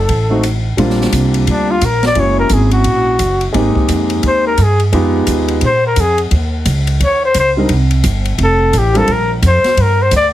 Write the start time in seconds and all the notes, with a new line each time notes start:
Already playing: A4
0.08 A1, kick, ride
0.30 A3 C4 D#4 F#4
0.43 hi-hat pedal, ride
0.77 A#1 G3 A#3 C4 D4 F4, kick, ride
0.90 snare
1.01 snare
1.12 C2, kick, hi-hat pedal, ride
1.34 ride
1.47 D2, kick, ride
1.51 D4
1.71 F4
1.81 A#1 A#4, kick, hi-hat pedal, ride
2.03 D5, snare, ride
2.15 F#1 G#3 A#3 C#4 E4 F#4, kick, ride
2.20 C#5
2.39 A#4
2.49 G#1 G#4, kick, hi-hat pedal, ride
2.71 F#4, ride
2.84 A#1, kick, ride
3.19 F#1, kick, hi-hat pedal, ride
3.41 ride
3.52 G#1 G#3 A#3 C4 D#4 G4, kick, ride
3.75 muted upright bass stroke, kick
3.88 F2, kick, hi-hat pedal, ride
4.10 ride
4.23 D#2, kick, ride
4.27 C5
4.47 A#4
4.57 G2, kick, hi-hat pedal, ride
4.63 G#4
4.80 ride
4.92 F2 G#3 B3 D#4 F4 G4, kick, ride
5.27 D#2, kick, hi-hat pedal, ride
5.48 ride
5.61 A#2, kick, ride
5.66 C5
5.87 A#4
5.96 F2, kick, hi-hat pedal, ride
6.01 G#4
6.18 ride
6.31 D#2, kick, ride
6.65 C#2, kick, hi-hat pedal, ride
6.87 ride
7.00 D#2, kick, ride
7.04 C#5
7.25 C5
7.34 C#2, kick, hi-hat pedal, ride
7.40 C5
7.57 G3 C4 D4 D#4 A#4
7.69 C2, kick, ride
7.91 ride
8.03 G1, kick, hi-hat pedal, ride
8.25 ride
8.38 F1, kick, ride
8.44 A4
8.73 A1, kick, hi-hat pedal, ride
8.78 G4
8.94 G3 C4 D4 F4 A4 A#4, ride
9.08 A#1, kick, ride
9.12 A#4
9.42 F2, kick, hi-hat pedal, ride
9.47 C5
9.63 muted upright bass stroke, snare, ride
9.77 G2, kick, ride
9.82 A#4
10.02 C5
10.11 D2, kick, hi-hat pedal, ride
10.16 D5